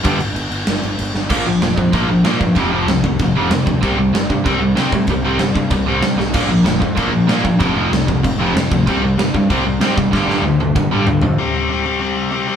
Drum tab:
CC |xxxxxxx-|x-x-x-x-|x-x-x-x-|x-x-x-x-|
SD |----o--o|--o---o-|--o---o-|--o---o-|
T1 |--------|--------|--------|--------|
T2 |--------|--------|--------|--------|
FT |--------|--------|--------|--------|
BD |o-------|o--oo--o|o--oo--o|o--oo--o|

CC |x-x-x-x-|x-x-x-x-|x-x-x-x-|x-x-x-x-|
SD |--o---oo|--o---o-|--o---o-|--o---o-|
T1 |--------|--------|--------|--------|
T2 |--------|--------|--------|--------|
FT |--------|--------|--------|--------|
BD |o--oo---|o--oo--o|o--oo--o|o--oo--o|

CC |--------|--------|
SD |oo------|--------|
T1 |---o----|--------|
T2 |----o---|--------|
FT |------oo|--------|
BD |o---o---|--------|